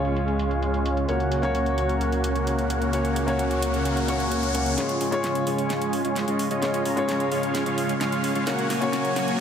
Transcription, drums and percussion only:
0.05 closed hi-hat soft
0.16 closed hi-hat medium
0.28 closed hi-hat soft
0.39 closed hi-hat medium
0.51 closed hi-hat soft
0.62 closed hi-hat medium
0.74 closed hi-hat soft
0.86 closed hi-hat medium
0.97 closed hi-hat soft
1.09 closed hi-hat medium
1.20 closed hi-hat soft
1.32 closed hi-hat medium
1.43 closed hi-hat soft
1.55 closed hi-hat medium
1.66 closed hi-hat soft
1.78 closed hi-hat medium
1.89 closed hi-hat soft
2.01 closed hi-hat medium
2.12 closed hi-hat soft
2.24 closed hi-hat medium
2.36 closed hi-hat soft
2.47 closed hi-hat medium
2.59 closed hi-hat soft
2.70 closed hi-hat medium
2.82 closed hi-hat soft
2.93 closed hi-hat medium
3.05 closed hi-hat soft
3.16 closed hi-hat medium
3.28 closed hi-hat soft
3.39 closed hi-hat medium
3.51 closed hi-hat soft
3.62 closed hi-hat medium
3.74 closed hi-hat soft
3.85 closed hi-hat medium
3.97 closed hi-hat soft
4.08 closed hi-hat medium
4.20 closed hi-hat soft
4.31 closed hi-hat medium
4.43 closed hi-hat soft
4.55 closed hi-hat medium
4.66 closed hi-hat soft
4.78 snare soft
4.78 closed hi-hat medium
4.89 closed hi-hat soft
5.01 open hi-hat loud
5.12 closed hi-hat soft
5.24 snare soft
5.24 closed hi-hat medium
5.35 closed hi-hat soft
5.47 open hi-hat loud
5.58 closed hi-hat soft
5.70 snare soft
5.70 closed hi-hat medium
5.82 closed hi-hat soft
5.93 open hi-hat loud
6.05 closed hi-hat soft
6.16 snare medium
6.16 closed hi-hat medium
6.28 closed hi-hat soft
6.39 open hi-hat loud
6.51 closed hi-hat soft
6.62 snare medium
6.62 closed hi-hat medium
6.74 closed hi-hat soft
6.85 open hi-hat loud
6.97 closed hi-hat soft
7.09 snare medium
7.09 closed hi-hat medium
7.20 closed hi-hat soft
7.32 open hi-hat loud
7.43 closed hi-hat soft
7.55 snare medium
7.55 closed hi-hat medium
7.66 closed hi-hat soft
7.78 open hi-hat loud
7.89 closed hi-hat soft
8.01 snare medium
8.01 closed hi-hat medium
8.12 closed hi-hat soft
8.24 open hi-hat loud
8.35 closed hi-hat soft
8.47 snare medium
8.47 closed hi-hat medium
8.59 closed hi-hat soft
8.70 snare medium
8.70 open hi-hat loud
8.82 closed hi-hat soft
8.93 snare medium
8.93 closed hi-hat medium
9.05 closed hi-hat soft
9.16 snare medium
9.16 open hi-hat loud
9.28 closed hi-hat soft

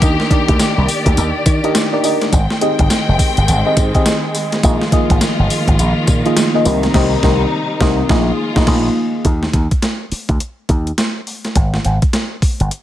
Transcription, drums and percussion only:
0.02 kick loud
0.02 closed hi-hat medium
0.02 tambourine medium
0.20 snare medium
0.31 kick medium
0.31 closed hi-hat medium
0.48 kick medium
0.48 closed hi-hat medium
0.59 snare loud
0.59 closed hi-hat medium
0.59 tambourine medium
0.88 open hi-hat medium
0.88 tambourine medium
1.06 kick medium
1.06 closed hi-hat medium
1.17 closed hi-hat medium
1.17 tambourine medium
1.46 kick medium
1.46 closed hi-hat medium
1.46 tambourine medium
1.64 closed hi-hat soft
1.75 snare loud
1.75 closed hi-hat medium
1.75 tambourine medium
2.04 open hi-hat medium
2.04 tambourine medium
2.21 snare medium
2.21 closed hi-hat soft
2.33 kick loud
2.33 closed hi-hat medium
2.33 tambourine medium
2.50 snare medium
2.61 closed hi-hat medium
2.79 kick medium
2.79 closed hi-hat medium
2.90 snare loud
2.90 closed hi-hat medium
2.90 tambourine medium
3.19 kick medium
3.19 open hi-hat medium
3.19 tambourine medium
3.37 closed hi-hat medium
3.48 closed hi-hat medium
3.48 tambourine medium
3.77 kick loud
3.77 closed hi-hat medium
3.77 tambourine medium
3.95 kick medium
3.95 closed hi-hat soft
4.06 snare loud
4.06 closed hi-hat medium
4.06 tambourine medium
4.35 open hi-hat medium
4.35 tambourine medium
4.52 snare medium
4.52 closed hi-hat medium
4.63 kick loud
4.63 closed hi-hat medium
4.63 tambourine medium
4.82 snare medium
4.92 kick loud
4.92 closed hi-hat medium
5.10 kick medium
5.10 closed hi-hat medium
5.21 snare loud
5.21 closed hi-hat medium
5.21 tambourine medium
5.50 open hi-hat medium
5.50 tambourine medium
5.68 kick loud
5.68 closed hi-hat medium
5.79 closed hi-hat medium
5.79 tambourine medium
6.07 kick loud
6.07 closed hi-hat medium
6.07 tambourine medium
6.26 closed hi-hat soft
6.37 snare loud
6.37 closed hi-hat medium
6.37 tambourine medium
6.65 open hi-hat medium
6.65 tambourine medium
6.83 snare medium
6.83 closed hi-hat soft
6.94 kick loud
6.94 snare loud
6.94 crash medium
7.23 kick loud
7.23 snare loud
7.81 kick loud
7.81 snare loud
8.09 kick loud
8.09 snare loud
8.56 kick loud
8.56 snare loud
8.67 kick loud
8.67 snare loud
8.67 crash medium
9.25 kick loud
9.25 closed hi-hat medium
9.43 snare medium
9.53 kick medium
9.53 closed hi-hat medium
9.71 kick medium
9.71 closed hi-hat medium
9.82 snare medium
9.82 closed hi-hat medium
10.12 open hi-hat medium
10.29 kick medium
10.29 closed hi-hat medium
10.40 closed hi-hat medium
10.69 kick loud
10.69 closed hi-hat medium
10.87 closed hi-hat soft
10.98 snare loud
10.98 closed hi-hat medium
11.27 open hi-hat medium
11.45 snare medium
11.45 closed hi-hat soft
11.55 kick loud
11.55 closed hi-hat medium
11.74 snare medium
11.85 closed hi-hat medium
12.02 kick medium
12.02 closed hi-hat medium
12.13 snare medium
12.13 closed hi-hat medium
12.42 kick medium
12.42 open hi-hat medium
12.60 closed hi-hat medium
12.71 closed hi-hat medium

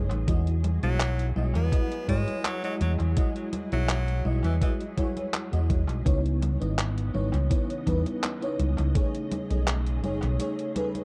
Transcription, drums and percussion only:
0.11 closed hi-hat soft
0.11 high conga soft
0.28 kick loud
0.28 closed hi-hat medium
0.28 high conga soft
0.47 closed hi-hat soft
0.64 closed hi-hat medium
0.64 high conga medium
0.83 closed hi-hat soft
0.83 high conga soft
1.00 clap loud
1.00 closed hi-hat medium
1.00 high conga soft
1.19 closed hi-hat soft
1.36 high conga medium
1.55 closed hi-hat soft
1.55 high conga soft
1.72 kick loud
1.72 closed hi-hat medium
1.72 high conga soft
1.92 closed hi-hat soft
2.08 kick medium
2.08 closed hi-hat medium
2.08 high conga medium
2.28 closed hi-hat soft
2.28 high conga soft
2.45 clap loud
2.45 closed hi-hat medium
2.45 high conga soft
2.64 closed hi-hat soft
2.81 closed hi-hat medium
2.81 high conga medium
3.00 closed hi-hat soft
3.00 high conga soft
3.17 kick loud
3.17 closed hi-hat medium
3.17 high conga soft
3.36 closed hi-hat soft
3.53 closed hi-hat medium
3.53 high conga medium
3.72 closed hi-hat soft
3.72 high conga soft
3.89 clap loud
3.89 closed hi-hat medium
3.89 high conga soft
4.08 closed hi-hat soft
4.25 high conga medium
4.44 closed hi-hat soft
4.44 high conga soft
4.61 kick loud
4.61 closed hi-hat medium
4.61 high conga soft
4.81 closed hi-hat soft
4.98 kick medium
4.98 closed hi-hat medium
4.98 high conga medium
5.17 closed hi-hat soft
5.17 high conga soft
5.34 clap loud
5.34 closed hi-hat medium
5.34 high conga soft
5.53 closed hi-hat soft
5.70 kick loud
5.70 closed hi-hat medium
5.70 high conga medium
5.89 closed hi-hat soft
5.89 high conga soft
6.06 kick loud
6.06 closed hi-hat medium
6.06 high conga soft
6.26 closed hi-hat soft
6.42 closed hi-hat medium
6.42 high conga medium
6.62 closed hi-hat soft
6.62 high conga soft
6.79 clap loud
6.79 closed hi-hat medium
6.79 high conga soft
6.98 closed hi-hat soft
7.15 high conga medium
7.34 closed hi-hat soft
7.34 high conga soft
7.51 kick loud
7.51 closed hi-hat medium
7.51 high conga soft
7.70 closed hi-hat soft
7.87 kick medium
7.87 closed hi-hat medium
7.87 high conga medium
8.06 closed hi-hat soft
8.06 high conga soft
8.23 clap loud
8.23 closed hi-hat medium
8.23 high conga soft
8.42 closed hi-hat soft
8.60 closed hi-hat medium
8.60 high conga medium
8.78 closed hi-hat soft
8.78 high conga soft
8.95 kick loud
8.95 closed hi-hat medium
8.95 high conga soft
9.15 closed hi-hat soft
9.32 closed hi-hat medium
9.32 high conga medium
9.51 closed hi-hat soft
9.51 high conga soft
9.67 clap loud
9.67 closed hi-hat loud
9.67 high conga soft
9.87 closed hi-hat soft
10.04 closed hi-hat soft
10.04 high conga medium
10.23 closed hi-hat soft
10.23 high conga soft
10.40 closed hi-hat medium
10.40 high conga soft
10.59 closed hi-hat soft
10.76 closed hi-hat medium
10.76 high conga medium
10.95 closed hi-hat soft
10.95 high conga soft

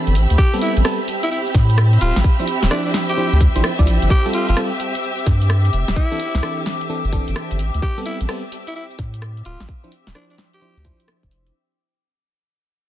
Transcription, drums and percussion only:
0.07 closed hi-hat medium
0.07 shaker soft
0.15 open hi-hat loud
0.15 shaker medium
0.30 closed hi-hat medium
0.30 shaker soft
0.38 kick loud
0.38 shaker soft
0.54 shaker soft
0.62 open hi-hat loud
0.62 shaker medium
0.77 closed hi-hat medium
0.77 shaker soft
0.85 cross-stick loud
0.85 shaker soft
1.08 open hi-hat loud
1.08 shaker medium
1.23 closed hi-hat medium
1.23 shaker soft
1.31 shaker soft
1.46 shaker soft
1.55 kick loud
1.55 snare soft
1.55 open hi-hat loud
1.55 shaker medium
1.70 closed hi-hat medium
1.70 shaker soft
1.78 cross-stick loud
1.78 shaker soft
1.93 closed hi-hat medium
1.93 shaker soft
2.01 open hi-hat loud
2.01 shaker medium
2.16 snare medium
2.16 closed hi-hat medium
2.16 shaker soft
2.24 kick loud
2.24 shaker soft
2.40 shaker soft
2.48 open hi-hat loud
2.48 shaker medium
2.63 snare medium
2.63 closed hi-hat medium
2.63 shaker soft
2.71 cross-stick loud
2.71 shaker soft
2.94 snare medium
2.94 open hi-hat loud
2.94 shaker medium
3.09 closed hi-hat medium
3.09 shaker soft
3.17 shaker soft
3.33 shaker soft
3.41 kick loud
3.41 open hi-hat loud
3.41 shaker medium
3.56 closed hi-hat medium
3.56 shaker soft
3.64 cross-stick loud
3.64 shaker soft
3.79 kick medium
3.79 closed hi-hat medium
3.79 shaker soft
3.87 open hi-hat loud
3.87 shaker medium
4.02 closed hi-hat medium
4.02 shaker soft
4.10 kick loud
4.10 shaker soft
4.25 shaker soft
4.34 open hi-hat loud
4.34 shaker medium
4.49 closed hi-hat medium
4.49 shaker soft
4.57 cross-stick loud
4.57 shaker soft
4.80 open hi-hat loud
4.80 shaker medium
4.95 closed hi-hat medium
4.95 shaker soft
5.03 shaker soft
5.18 shaker soft
5.27 kick loud
5.27 snare soft
5.27 open hi-hat loud
5.27 shaker medium
5.42 closed hi-hat medium
5.42 shaker soft
5.50 cross-stick loud
5.50 shaker soft
5.65 closed hi-hat medium
5.65 shaker soft
5.73 open hi-hat loud
5.73 shaker medium
5.88 snare medium
5.88 closed hi-hat medium
5.88 shaker soft
5.96 kick loud
5.96 shaker soft
6.12 shaker soft
6.20 open hi-hat loud
6.20 shaker medium
6.35 snare medium
6.35 closed hi-hat medium
6.35 shaker soft
6.43 cross-stick loud
6.43 shaker soft
6.66 snare medium
6.66 open hi-hat loud
6.66 shaker medium
6.81 closed hi-hat medium
6.81 shaker soft
6.89 shaker soft
7.05 shaker soft
7.13 kick loud
7.13 open hi-hat loud
7.13 shaker medium
7.28 closed hi-hat medium
7.28 shaker soft
7.36 cross-stick loud
7.36 shaker soft
7.51 closed hi-hat medium
7.51 shaker soft
7.59 open hi-hat loud
7.59 shaker medium
7.74 closed hi-hat medium
7.74 shaker soft
7.82 kick loud
7.82 shaker soft
7.98 shaker soft
8.06 open hi-hat loud
8.06 shaker medium
8.21 closed hi-hat medium
8.21 shaker soft
8.29 cross-stick loud
8.29 shaker soft
8.52 open hi-hat loud
8.52 shaker medium
8.67 closed hi-hat medium
8.67 shaker soft
8.75 shaker soft
8.91 shaker soft
8.99 kick loud
8.99 snare soft
8.99 open hi-hat loud
8.99 shaker medium
9.14 closed hi-hat medium
9.14 shaker soft
9.22 cross-stick loud
9.22 shaker soft
9.37 closed hi-hat medium
9.37 shaker soft
9.45 open hi-hat loud
9.45 shaker medium
9.60 snare medium
9.60 closed hi-hat medium
9.60 shaker soft
9.69 kick loud
9.69 shaker soft
9.84 shaker soft
9.92 open hi-hat loud
9.92 shaker medium
10.07 snare medium
10.07 closed hi-hat medium
10.07 shaker soft
10.15 cross-stick loud
10.15 shaker soft
10.30 closed hi-hat soft
10.30 shaker soft
10.38 snare medium
10.38 open hi-hat loud
10.38 shaker medium
10.53 closed hi-hat medium
10.53 shaker soft
10.62 shaker soft
10.77 shaker soft
10.85 kick loud
10.85 open hi-hat loud
10.85 shaker medium
11.00 closed hi-hat medium
11.00 shaker soft
11.08 cross-stick loud
11.08 shaker soft
11.23 kick medium
11.23 closed hi-hat medium
11.23 shaker soft
11.31 open hi-hat loud
11.31 shaker medium
11.47 closed hi-hat medium
11.47 shaker soft

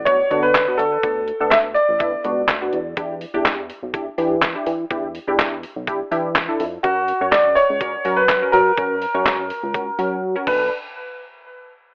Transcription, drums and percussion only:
0.07 kick loud
0.07 closed hi-hat medium
0.31 closed hi-hat soft
0.54 kick loud
0.54 snare medium
0.54 clap loud
0.54 closed hi-hat medium
0.79 closed hi-hat medium
1.03 kick loud
1.03 closed hi-hat medium
1.28 closed hi-hat medium
1.51 kick loud
1.51 snare medium
1.51 clap loud
1.51 closed hi-hat medium
1.76 closed hi-hat soft
2.00 kick loud
2.00 closed hi-hat medium
2.24 closed hi-hat soft
2.48 kick loud
2.48 snare medium
2.48 clap loud
2.48 closed hi-hat medium
2.73 closed hi-hat medium
2.97 kick loud
2.97 closed hi-hat medium
3.21 open hi-hat medium
3.45 kick loud
3.45 snare loud
3.45 clap loud
3.45 closed hi-hat medium
3.70 open hi-hat medium
3.94 kick loud
3.94 closed hi-hat medium
4.18 open hi-hat medium
4.42 kick loud
4.42 snare medium
4.42 clap loud
4.42 closed hi-hat medium
4.66 open hi-hat medium
4.91 kick loud
4.91 closed hi-hat medium
5.15 open hi-hat medium
5.39 kick loud
5.39 snare loud
5.39 clap loud
5.39 closed hi-hat medium
5.63 open hi-hat medium
5.87 kick loud
5.87 closed hi-hat medium
6.12 open hi-hat medium
6.35 kick loud
6.35 snare medium
6.35 clap loud
6.35 closed hi-hat medium
6.60 open hi-hat medium
6.84 kick loud
6.84 closed hi-hat medium
7.08 open hi-hat medium
7.32 kick loud
7.32 snare loud
7.32 clap loud
7.32 closed hi-hat medium
7.57 open hi-hat medium
7.81 kick loud
7.81 closed hi-hat medium
8.05 open hi-hat medium
8.28 kick loud
8.28 snare medium
8.28 clap loud
8.28 closed hi-hat medium
8.53 open hi-hat medium
8.77 kick loud
8.77 closed hi-hat medium
9.02 open hi-hat medium
9.26 kick loud
9.26 snare loud
9.26 clap loud
9.26 closed hi-hat medium
9.50 open hi-hat medium
9.74 kick loud
9.74 closed hi-hat medium
9.99 open hi-hat medium
10.47 kick loud
10.47 crash medium

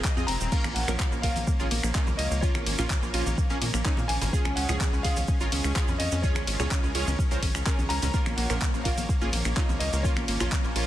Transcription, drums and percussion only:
0.04 kick loud
0.04 clap loud
0.04 shaker medium
0.18 shaker soft
0.28 open hi-hat loud
0.28 ride medium
0.41 shaker medium
0.52 kick loud
0.52 crash medium
0.52 shaker medium
0.64 finger snap medium
0.64 high conga medium
0.64 shaker soft
0.76 open hi-hat loud
0.76 ride medium
0.88 finger snap medium
0.88 low conga medium
0.88 shaker medium
1.00 kick loud
1.00 clap loud
1.00 high conga medium
1.00 shaker medium
1.12 high woodblock medium
1.12 shaker soft
1.23 kick medium
1.23 open hi-hat loud
1.23 ride medium
1.36 open hi-hat medium
1.36 high conga medium
1.36 shaker medium
1.47 kick loud
1.47 shaker medium
1.60 shaker soft
1.71 open hi-hat loud
1.71 ride medium
1.71 high conga medium
1.83 finger snap medium
1.83 shaker medium
1.95 kick loud
1.95 clap loud
1.95 shaker medium
2.07 high conga medium
2.07 high woodblock medium
2.07 shaker soft
2.19 open hi-hat loud
2.19 ride medium
2.31 shaker medium
2.43 kick loud
2.43 shaker medium
2.55 finger snap medium
2.55 high conga loud
2.55 shaker soft
2.66 open hi-hat loud
2.66 ride medium
2.78 finger snap medium
2.78 low conga medium
2.78 shaker medium
2.90 kick loud
2.90 clap loud
2.90 high conga medium
2.90 shaker medium
3.03 high woodblock medium
3.03 shaker soft
3.14 open hi-hat loud
3.14 ride medium
3.26 high conga medium
3.26 shaker medium
3.38 kick loud
3.38 shaker medium
3.50 shaker soft
3.62 open hi-hat loud
3.62 ride medium
3.62 high conga medium
3.74 finger snap medium
3.74 shaker medium
3.85 kick loud
3.85 clap loud
3.85 shaker medium
3.97 high conga loud
3.97 shaker soft
4.09 open hi-hat loud
4.09 ride medium
4.21 open hi-hat medium
4.21 low conga loud
4.21 high woodblock medium
4.21 shaker medium
4.33 kick loud
4.33 shaker medium
4.45 finger snap medium
4.45 high conga medium
4.45 shaker soft
4.57 open hi-hat loud
4.57 ride medium
4.69 finger snap medium
4.69 low conga medium
4.69 shaker medium
4.80 kick loud
4.80 clap loud
4.80 high conga medium
4.80 shaker medium
4.93 high woodblock medium
4.93 shaker soft
5.04 kick medium
5.04 open hi-hat loud
5.04 ride medium
5.16 open hi-hat medium
5.16 high conga medium
5.16 shaker medium
5.27 kick loud
5.27 shaker medium
5.40 shaker soft
5.52 open hi-hat loud
5.52 ride medium
5.52 high conga medium
5.64 finger snap medium
5.64 shaker medium
5.76 kick loud
5.76 clap loud
5.76 shaker medium
5.88 high conga loud
5.88 high woodblock medium
5.88 shaker soft
6.00 open hi-hat loud
6.00 ride medium
6.12 shaker medium
6.24 kick loud
6.24 shaker medium
6.35 finger snap medium
6.35 high conga medium
6.35 shaker soft
6.47 open hi-hat loud
6.47 ride medium
6.60 finger snap medium
6.60 low conga loud
6.60 shaker medium
6.71 kick loud
6.71 clap loud
6.71 high conga medium
6.71 shaker medium
6.83 high woodblock medium
6.83 shaker soft
6.95 open hi-hat loud
6.95 ride medium
7.08 high conga medium
7.08 shaker medium
7.19 kick loud
7.19 shaker medium
7.31 shaker soft
7.43 kick medium
7.43 open hi-hat loud
7.43 ride medium
7.43 high conga medium
7.55 finger snap medium
7.55 shaker medium
7.66 kick loud
7.66 clap loud
7.66 shaker medium
7.79 high conga medium
7.79 shaker soft
7.90 open hi-hat loud
7.90 ride medium
8.02 open hi-hat medium
8.02 low conga medium
8.02 high woodblock medium
8.02 shaker medium
8.14 kick loud
8.14 shaker medium
8.26 finger snap medium
8.26 high conga medium
8.26 shaker soft
8.38 open hi-hat loud
8.38 ride medium
8.50 finger snap medium
8.50 low conga medium
8.50 shaker medium
8.61 kick loud
8.61 clap loud
8.61 high conga medium
8.61 shaker medium
8.74 high woodblock medium
8.74 shaker soft
8.85 kick medium
8.85 open hi-hat loud
8.85 ride medium
8.98 open hi-hat medium
8.98 high conga medium
8.98 shaker medium
9.09 kick loud
9.09 shaker medium
9.21 shaker soft
9.33 open hi-hat loud
9.33 ride medium
9.33 high conga medium
9.45 finger snap medium
9.45 shaker medium
9.57 kick loud
9.57 clap loud
9.57 shaker medium
9.69 high conga medium
9.69 high woodblock medium
9.69 shaker soft
9.80 open hi-hat loud
9.80 ride medium
9.93 shaker medium
10.04 kick loud
10.04 shaker medium
10.16 finger snap medium
10.16 high conga medium
10.16 shaker soft
10.28 open hi-hat loud
10.28 ride medium
10.40 finger snap medium
10.40 low conga loud
10.40 shaker medium
10.51 kick loud
10.51 clap loud
10.51 high conga medium
10.51 shaker medium
10.64 high woodblock medium
10.64 shaker soft
10.76 open hi-hat loud
10.76 ride medium

